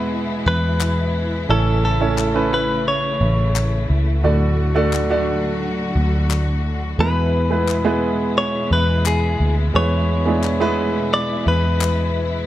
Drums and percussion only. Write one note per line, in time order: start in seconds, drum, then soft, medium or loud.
0.81 clap medium
2.18 clap medium
3.56 clap medium
4.93 clap medium
6.31 clap medium
7.68 clap medium
9.06 clap loud
10.43 clap medium
11.81 clap loud